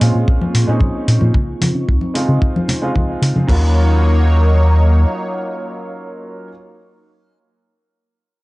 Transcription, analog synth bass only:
0.01 A#2
0.15 A#2
0.28 A#1
0.54 A#2
0.68 A#2
0.81 A#1
1.08 A#2
1.22 A#2
1.61 C#3
1.75 C#3
1.89 C#2
2.15 C#3
2.28 C#3
2.68 C#3
2.82 C#3
2.95 C#2
3.22 C#3
3.36 C#3
3.49 D#2

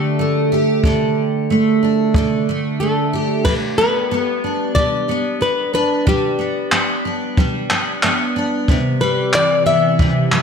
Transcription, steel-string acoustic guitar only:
Already playing: D3 A3 D4
0.19 A3
0.52 G4
0.85 D3
1.50 A3
1.83 D4
2.16 D3
2.49 A3
2.81 A3
3.13 G4
3.46 G3
3.79 B3
4.11 B3
4.44 D4
4.76 G3
5.09 B3
5.41 B3
5.74 D4
6.07 G3
6.39 B3
6.72 B3
7.05 D4
7.38 G3
7.71 B3
8.04 B3
8.36 D4
8.69 C3
9.01 G3
9.34 E3
9.66 B3
9.99 C3
10.32 G3

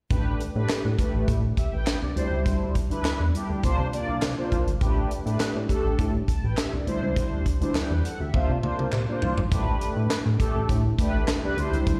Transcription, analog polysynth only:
0.10 A3 D4 G4 B4
0.55 A3 D4 G4 B4
0.98 A3 D4 G4 B4
1.58 G4 E5
1.73 B4 G5
2.02 D5
2.16 G3 D4 E4 C5
2.90 G3 D4 E4 B4
3.33 G3 D4 E4 G4
3.63 A#3 D4 F4 C5
3.92 A#3 D4 F4 D5
4.37 A#3 D4 F4 C5
4.80 A3 D4 G4 B4
5.25 A3 D4 G4 B4
5.69 A3 D4 G4 A4
6.28 A5
6.44 B4 G5
6.58 G4 E5
6.73 D5
6.87 G3 D4 E4 C5
7.61 G3 D4 E4 C5
7.75 B4 G5
8.04 A4 F#5
8.20 G4 E5
8.33 A#3 D4 F4 C5
8.63 A#3 D4 F4 C5
9.08 A#3 D4 F4 C5
9.51 A3 D4 G4 B4
10.39 A3 D4 G4 A4
10.98 A3 D4 G4 B4
11.43 A3 D4 G4 B4
11.57 G3 D4 E4 C5

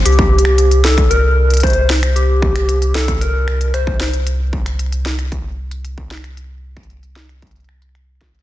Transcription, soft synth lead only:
0.06 G4
0.84 A4
1.11 A#4
1.63 C5
2.16 G4
2.95 A4
3.21 A#4
3.74 C5

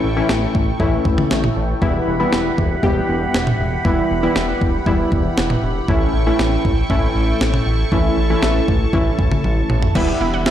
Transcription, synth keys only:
0.17 E3 A3 C#4 E4
0.80 E3 A3 C#4 E4
1.82 E3 G3 B3 E4
2.20 E3 G3 B3 E4
2.83 E3 G3 B3 G4
3.85 E3 G3 B3 E4
4.23 E3 G3 B3 E4
4.87 E3 G3 B3 E4
5.89 E3 A3 C#4 E4
6.27 E3 A3 C#4 E4
6.90 E3 A3 C#4 E4
7.92 E3 A3 C#4 E4
8.30 E3 A3 C#4 E4
8.94 E3 A3 C#4 E4
9.95 E3 G3 B3 E4

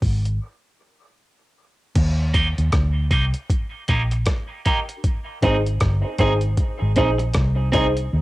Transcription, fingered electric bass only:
0.03 G#1
1.96 D#2
2.58 D#2
2.74 D2
3.11 C2
3.89 A#1
5.43 G#1
5.82 G1
6.20 G#1
6.82 G#1
6.97 A#1
7.35 C2
8.13 D#2

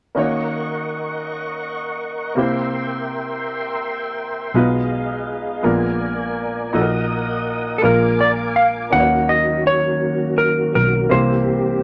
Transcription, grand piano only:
0.15 D#3 A#3 C#4 D#4 F#4
0.19 C#5
2.35 C3 A#3 C4 E4 G4 C5
4.55 B2 G#3 B3 D#4 F4 B4
5.63 A#2 G#3 B3 D4 F4 A#4
6.73 A#2 D#4 F#4 A4
6.82 A#4
7.82 A#2 G#3 A#3 D4 F4 A#4
8.90 D#3 A#3 C#4 D#4 F#4 B4
9.00 C#5
11.09 C3 E3 A#3 C4 G4 C5

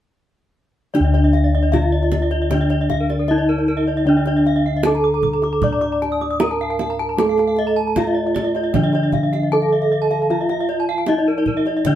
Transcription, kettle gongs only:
0.95 D4
1.00 D2
1.72 D#4
3.28 D#4
4.06 D4
4.85 D#4
5.62 A2
6.41 D#4
7.18 A4
7.97 D#4
8.74 F3
9.52 D#4
10.30 F4
11.09 D#4
11.86 D3

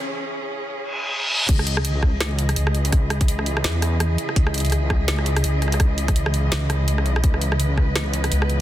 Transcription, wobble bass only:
1.49 C#2
2.57 C#2
3.64 E2
4.36 C#2
5.44 C#2
6.52 C#2
7.02 C2
7.24 C#2
8.32 C#2

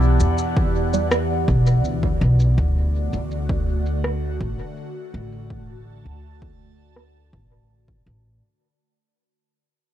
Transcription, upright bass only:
Already playing: B1
0.20 E2
1.48 B1
1.84 D2
2.21 B1
2.58 D2
3.13 D2
4.41 A1
5.14 A1
6.05 D2
7.33 A1
8.06 A1

